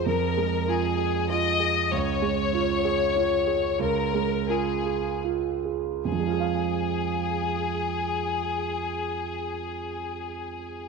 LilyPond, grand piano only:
\new Staff \with { instrumentName = "Grand piano" } { \time 3/4 \key f \minor \tempo 4 = 81 <f, aes'>8 aes8 f'8 aes'8 f'8 aes'8 | des,8 aes8 f'8 aes'8 f'8 aes'8 | des,8 aes8 f'8 aes'8 f'8 aes'8 | <f, f aes f' aes' f''>2.~ |
<f, f aes f' aes' f''>2. | }